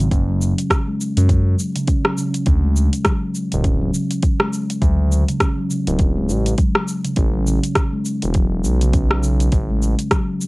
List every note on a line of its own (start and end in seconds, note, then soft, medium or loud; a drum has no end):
0.00 cabasa soft
0.11 0.54 F#1 medium
0.11 0.27 C#4 medium
0.11 kick loud
0.11 closed hi-hat soft
0.11 cabasa soft
0.28 0.35 F#3 medium
0.40 0.57 C#3 medium
0.40 cabasa medium
0.58 closed hi-hat soft
0.58 cabasa soft
0.70 kick loud
0.70 cross-stick medium
0.70 closed hi-hat soft
0.70 cabasa soft
0.87 1.28 G#3 medium
1.01 cabasa medium
1.17 1.55 F#2 medium
1.17 closed hi-hat medium
1.17 cabasa soft
1.28 1.45 F#3 medium
1.28 kick loud
1.28 closed hi-hat soft
1.28 cabasa soft
1.59 cabasa medium
1.75 1.82 C#3 medium
1.75 closed hi-hat medium
1.75 cabasa soft
1.87 2.04 C#4 medium
1.87 kick medium
1.87 closed hi-hat soft
1.87 cabasa soft
2.05 2.12 F#3 medium
2.05 cross-stick medium
2.17 2.34 C#3 medium
2.17 cabasa medium
2.34 closed hi-hat medium
2.34 cabasa soft
2.46 2.89 D2 medium
2.46 kick loud
2.46 closed hi-hat soft
2.46 cabasa soft
2.64 3.04 G#3 medium
2.76 cabasa medium
2.93 closed hi-hat soft
2.93 cabasa soft
3.05 3.22 F#3 medium
3.05 kick loud
3.05 cross-stick medium
3.05 closed hi-hat soft
3.05 cabasa soft
3.35 cabasa medium
3.52 3.91 D1 medium
3.52 3.59 C#3 medium
3.52 closed hi-hat medium
3.52 cabasa soft
3.64 3.81 C#4 medium
3.64 kick loud
3.64 closed hi-hat soft
3.64 cabasa soft
3.81 3.88 F#3 medium
3.93 4.10 C#3 medium
3.93 cabasa medium
4.11 closed hi-hat soft
4.11 cabasa soft
4.23 kick loud
4.23 closed hi-hat soft
4.23 cabasa soft
4.40 4.81 G#3 medium
4.40 cross-stick medium
4.53 cabasa medium
4.70 closed hi-hat soft
4.70 cabasa soft
4.82 5.24 D2 medium
4.82 4.98 F#3 medium
4.82 kick loud
4.82 closed hi-hat soft
4.82 cabasa soft
5.12 cabasa medium
5.28 5.36 C#3 medium
5.28 closed hi-hat soft
5.28 cabasa soft
5.40 5.57 C#4 medium
5.40 kick loud
5.40 cross-stick medium
5.40 closed hi-hat soft
5.40 cabasa soft
5.58 5.65 F#3 medium
5.70 5.86 C#3 medium
5.70 cabasa medium
5.87 6.30 D1 medium
5.87 closed hi-hat medium
5.87 cabasa soft
5.99 kick loud
5.99 closed hi-hat soft
5.99 cabasa soft
6.17 6.57 G#3 medium
6.29 6.54 A1 medium
6.29 cabasa medium
6.46 closed hi-hat soft
6.46 cabasa soft
6.58 6.75 F#3 medium
6.58 kick loud
6.58 closed hi-hat soft
6.58 cabasa soft
6.75 cross-stick medium
6.88 cabasa medium
7.05 7.12 C#3 medium
7.05 closed hi-hat medium
7.05 cabasa soft
7.16 7.59 A1 medium
7.16 7.33 C#4 medium
7.16 kick loud
7.16 closed hi-hat soft
7.16 cabasa soft
7.34 7.41 F#3 medium
7.46 7.63 C#3 medium
7.46 cabasa medium
7.63 closed hi-hat soft
7.63 cabasa soft
7.75 kick loud
7.75 cross-stick medium
7.75 closed hi-hat soft
7.75 cabasa soft
7.93 8.33 G#3 medium
8.05 cabasa medium
8.22 8.66 E1 medium
8.22 closed hi-hat medium
8.22 cabasa soft
8.34 8.51 F#3 medium
8.34 kick loud
8.34 closed hi-hat soft
8.34 cabasa soft
8.64 9.49 B1 medium
8.64 cabasa medium
8.81 8.88 C#3 medium
8.81 closed hi-hat soft
8.81 cabasa soft
8.93 9.10 C#4 medium
8.93 kick medium
8.93 closed hi-hat soft
8.93 cabasa soft
9.11 9.18 F#3 medium
9.11 cross-stick medium
9.23 9.40 C#3 medium
9.23 cabasa medium
9.40 closed hi-hat soft
9.40 cabasa soft
9.52 9.95 A1 medium
9.52 kick loud
9.52 closed hi-hat soft
9.52 cabasa soft
9.70 10.10 G#3 medium
9.82 cabasa medium
9.99 closed hi-hat medium
9.99 cabasa soft
10.11 10.28 F#3 medium
10.11 kick medium
10.11 cross-stick medium
10.11 closed hi-hat soft
10.11 cabasa soft
10.41 cabasa medium